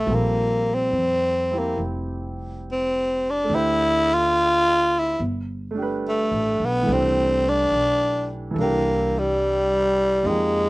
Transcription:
0.00 0.06 G3 soft
0.00 0.16 A3 medium
0.00 0.09 C4 soft
0.00 0.10 F4 soft
0.06 0.89 A#1 medium
0.06 3.49 G3 soft
0.06 1.50 C4 soft
0.06 3.51 F4 soft
0.11 0.76 A#3 medium
0.11 3.51 A4 soft
0.75 1.60 C4 medium
0.92 1.75 F2 medium
1.51 3.50 C4 soft
1.51 3.50 E4 soft
1.51 3.51 G4 soft
1.59 1.83 A#3 medium
1.77 3.45 F1 medium
2.72 3.31 C4 medium
3.30 3.56 D4 medium
3.44 5.16 A3 soft
3.48 5.14 D2 medium
3.48 5.18 D4 soft
3.53 4.15 E4 medium
3.53 5.20 G4 soft
3.53 5.21 C5 soft
4.14 5.01 F4 loud
4.99 5.23 E4 medium
5.20 6.27 G1 medium
5.71 6.84 A3 medium
5.71 6.86 D4 soft
5.78 6.88 G4 soft
5.82 6.90 B4 medium
6.09 6.67 A3 medium
6.32 6.57 A1 medium
6.60 6.85 B1 medium
6.65 6.94 B3 medium
6.82 8.49 E3 soft
6.82 8.55 A3 medium
6.88 7.68 C2 medium
6.88 8.56 D4 soft
6.93 7.50 C4 medium
6.93 8.58 G4 medium
7.49 8.30 D4 medium
7.71 8.51 B1 medium
8.51 10.23 E3 soft
8.51 10.24 A4 soft
8.56 10.21 C2 medium
8.56 10.26 D4 soft
8.60 9.20 A#3 medium
8.60 10.26 G4 medium
9.18 10.28 G3 medium
10.23 10.69 F2 medium
10.23 10.69 F3 soft
10.23 10.69 G#3 medium
10.23 10.69 A#3 soft
10.23 10.69 D#4 soft
10.28 10.69 G4 soft

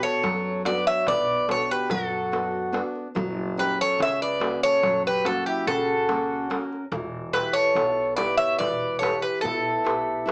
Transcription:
0.00 0.22 B2 medium
0.00 0.50 B3 soft
0.00 0.50 D4 soft
0.00 0.50 F#4 soft
0.00 0.62 A4 medium
0.00 0.62 C#5 loud
0.23 0.82 F#2 medium
0.23 1.05 F#3 medium
0.23 darbuka tek medium
0.65 1.32 B3 medium
0.65 1.32 D4 soft
0.65 1.32 F#4 medium
0.65 0.85 B4 medium
0.65 0.85 D5 medium
0.65 darbuka tek medium
0.86 1.06 C#5 medium
0.86 1.08 E5 loud
1.07 1.66 B1 medium
1.07 1.88 B2 medium
1.07 1.46 B4 medium
1.07 1.51 D5 loud
1.07 darbuka tek medium
1.07 darbuka dum medium
1.48 2.15 B3 soft
1.48 2.16 D4 soft
1.48 2.16 F#4 medium
1.48 1.68 A4 medium
1.48 1.70 C#5 medium
1.48 darbuka tek medium
1.71 1.90 G4 medium
1.71 1.90 B4 medium
1.90 2.79 F#2 medium
1.90 2.71 F#3 medium
1.90 2.81 F#4 medium
1.90 2.81 A4 medium
1.90 darbuka dum medium
2.32 2.71 B3 soft
2.32 2.72 D4 soft
2.32 2.71 F#4 soft
2.32 darbuka tek medium
2.72 3.07 B3 medium
2.72 3.07 D4 medium
2.72 3.07 F#4 medium
2.72 darbuka tek medium
2.95 darbuka tek soft
3.15 3.75 F#1 loud
3.15 3.97 F#3 medium
3.15 darbuka dum medium
3.57 4.24 C#4 soft
3.57 4.24 F#4 soft
3.57 3.78 G4 medium
3.57 4.25 A#4 medium
3.57 3.78 B4 medium
3.80 3.99 A4 medium
3.80 4.00 C#5 loud
3.98 4.58 C#2 medium
3.98 4.80 C#3 medium
3.98 4.19 C#5 medium
3.98 darbuka tek medium
4.02 4.22 E5 medium
4.22 4.60 B4 medium
4.22 4.60 D5 medium
4.40 5.08 A#3 medium
4.40 5.07 C#4 medium
4.40 5.07 F#4 soft
4.40 darbuka tek medium
4.63 5.03 A4 medium
4.63 5.02 C#5 loud
4.63 darbuka tek soft
4.83 5.42 F#1 medium
4.83 5.64 F#3 medium
4.83 darbuka tek medium
4.83 darbuka dum medium
5.07 5.25 G4 medium
5.07 5.25 B4 medium
5.24 5.92 A#3 medium
5.24 5.91 C#4 medium
5.24 5.92 F#4 soft
5.24 5.46 F#4 medium
5.24 5.46 A4 medium
5.24 darbuka tek medium
5.46 5.66 E4 medium
5.46 5.66 G4 medium
5.67 6.55 C#2 medium
5.67 6.48 C#3 medium
5.67 6.57 F#4 medium
5.67 6.57 A4 medium
5.67 darbuka dum medium
6.08 6.76 A#3 medium
6.08 6.49 C#4 soft
6.08 6.49 F#4 medium
6.08 darbuka tek medium
6.50 6.84 C#4 medium
6.50 6.83 F#4 medium
6.50 6.84 A#4 medium
6.50 darbuka tek medium
6.72 darbuka tek soft
6.92 7.50 E1 loud
6.92 7.74 E3 medium
6.92 darbuka dum medium
7.33 8.00 E4 medium
7.33 8.01 G4 soft
7.33 7.54 G4 medium
7.33 7.55 B4 medium
7.33 8.01 B4 medium
7.33 darbuka tek medium
7.53 8.13 A4 medium
7.53 8.13 C#5 loud
7.75 8.34 B1 loud
7.75 8.57 B2 medium
7.75 darbuka tek medium
8.15 8.84 E4 medium
8.15 8.84 G4 soft
8.15 8.36 B4 medium
8.15 8.85 B4 medium
8.15 8.36 D5 medium
8.15 darbuka tek medium
8.37 8.57 C#5 medium
8.37 8.57 E5 loud
8.58 9.18 E1 medium
8.58 9.40 E3 medium
8.58 8.97 B4 medium
8.58 8.98 D5 loud
8.58 darbuka tek medium
8.58 darbuka dum medium
8.99 9.68 E4 soft
8.99 9.68 G4 soft
8.99 9.20 A4 medium
8.99 9.69 B4 medium
8.99 9.22 C#5 medium
9.03 darbuka tek medium
9.21 9.41 G4 medium
9.21 9.41 B4 medium
9.41 10.32 B1 medium
9.41 10.24 B2 medium
9.41 10.32 E4 medium
9.41 10.32 A4 medium
9.45 darbuka dum medium
9.84 10.24 E4 soft
9.84 10.25 G4 soft
9.84 10.26 B4 medium
9.84 darbuka tek medium
10.26 10.32 E4 medium
10.26 10.32 G4 soft
10.26 10.32 B4 medium
10.26 darbuka tek medium

